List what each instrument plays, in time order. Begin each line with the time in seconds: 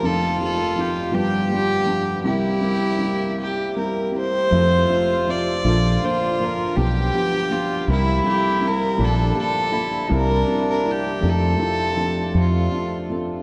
Already playing: harmonium F3 F4
0.02 felt piano F1 F2 F3 C4 D#4 A4, harmonium D#3 C4, cello F4, violin A4
0.38 felt piano F3 C4 D#4 G4
0.45 violin A4
0.76 felt piano F3 C4 D#4 F4
0.80 violin G4
1.11 felt piano G1 G2 F3 B3 D4 G4, harmonium D3 G3 B3, cello G4
1.17 violin G4
1.50 felt piano F3 B3 D4 G4
1.56 violin G4
1.85 felt piano F3 B3 D4 F4
2.24 felt piano C2 C3 G3 C4 E4 A#4, harmonium C3 A#3 E4, violin E4, cello G4
2.61 felt piano G3 C4 E4 A#4
2.98 felt piano G3 C4 E4 A#4
3.41 violin G4
3.76 felt piano G3 C4 E4 A#4, violin A#4
4.12 felt piano G3 C4 E4 A#4
4.17 violin C5
4.50 felt piano F1 F2 F3 C4 A4 E5, fretless electric bass F2, harmonium C3 F3 A3 E5, cello F4
4.88 felt piano F3 C4 A4 E5
5.27 felt piano F3 C4 G4 E5, violin D5
5.63 fretless electric bass A#1, felt piano A#1 A#2 F3 A#3 D4 A4, harmonium D3 F3 A#3 F4, cello F4
6.03 felt piano F3 A#3 D4 A4, violin C5
6.40 felt piano F3 A#3 D4 A#4
6.45 violin A#4
6.75 felt piano B1 B2 F3 B3 D4 G4, fretless electric bass B1, harmonium G3 B3, cello G4
6.81 violin G4
7.14 felt piano F3 B3 D4 G4
7.51 felt piano F3 B3 D4 G4, cello F4
7.88 fretless electric bass C2, felt piano C2 C3 G3 C4 E4 A#4, harmonium C3 G3 A#3 E4, cello E4
7.92 violin E4
8.24 felt piano G3 C4 E4 A4
8.29 violin G4
8.60 felt piano G3 C4 E4 A#4
8.67 violin A#4
8.96 felt piano A#1 A#2 F3 A#3 D4 A4, fretless electric bass A#1, harmonium D3 F3 A#3 A4, cello D4
9.04 violin A4
9.35 felt piano F3 A#3 D4 G4
9.39 violin A4
9.71 felt piano F3 A#3 D4 A4, cello E4
10.09 felt piano C2 C3 G3 C4 E4 A#4, fretless electric bass C2, harmonium C3 G3 E4, cello D4
10.15 violin A#4
10.48 felt piano G3 C4 E4 A#4
10.71 violin A#4
10.84 felt piano G3 C4 E4 G4
10.91 violin G4
11.21 felt piano F1 F2 F3 C4 D4 A4, fretless electric bass F2, harmonium F3 A3 D4, cello C4
11.29 violin A4
11.58 felt piano F3 C4 D4 E4
11.97 felt piano F3 C4 D4 F4
12.34 fretless electric bass F2
12.41 violin F4
12.72 felt piano F3 C4 D4 F4
13.10 felt piano F3 C4 D4 A4